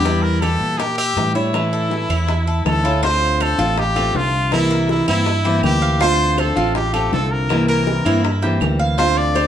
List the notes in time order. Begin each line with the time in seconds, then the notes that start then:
Already playing: E2 G4
0.05 E3 G3 E4, high bongo
0.22 A#4
0.41 E3 G3 E4 G4 A4, high bongo, claves
0.61 A#2
0.78 G4 A#4, muted nylon-string guitar stroke, high bongo
0.98 G4 E5, claves
1.16 A2 E3 G3 E4, high bongo, low bongo
1.35 G3 E4 C#5
1.53 E3 A3 C#4 E4, high bongo, claves
1.73 A4, high bongo
1.90 E3 A3 C#4 E4, high bongo
2.09 E2 E4, high bongo, claves
2.28 muted nylon-string guitar stroke, high bongo
2.47 A4
2.65 D2 E3 A3 C#4 E4 A4, high bongo, low bongo, claves
2.84 A3 C#4 E4 F4, high bongo
3.02 D3 A3 C4 F4 C5, high bongo
3.22 high bongo
3.40 A4 C5, high bongo, claves
3.58 A1 A3 C4 F4, high bongo
3.77 G4, muted nylon-string guitar stroke, high bongo
3.96 A3 C4 F4 A4, high bongo, claves
4.14 C2 D3 A3 C4 F4, high bongo, low bongo
4.51 C3 E3 A#3 C4 E4, high bongo, claves
4.71 A#4, high bongo
4.89 E4, high bongo
5.08 G2 E3 A#3 C4 E4, high bongo, claves
5.26 muted nylon-string guitar stroke, high bongo
5.44 E3 A#3 C4 E4 G4, high bongo
5.63 D2 E3 A#3 C4 E4 G4, high bongo, low bongo, claves
5.82 F5
6.00 D3 A3 C4 F4 C5, high bongo
6.20 high bongo
6.38 A4 C5, high bongo, claves
6.56 A1 A3 C4 F4, high bongo
6.75 G4, muted nylon-string guitar stroke, high bongo
6.93 A3 C4 F4 G4 A4, high bongo, claves
7.12 C2 D3 A3 C4 F4 A4, high bongo, low bongo
7.32 A#4
7.49 C3 E3 A#3 C4 E4, high bongo, claves
7.68 A#4, high bongo
7.87 high bongo
8.05 G2 E3 A#3 C4 E4, high bongo, claves
8.23 muted nylon-string guitar stroke, high bongo
8.42 E3 A#3 C4 E4 G4, high bongo
8.60 D2 E3 A#3 C4 E4, high bongo, low bongo, claves
8.79 F5
8.98 D3 A3 C4 F4 C5, high bongo
9.18 D5, high bongo
9.35 C5, high bongo, claves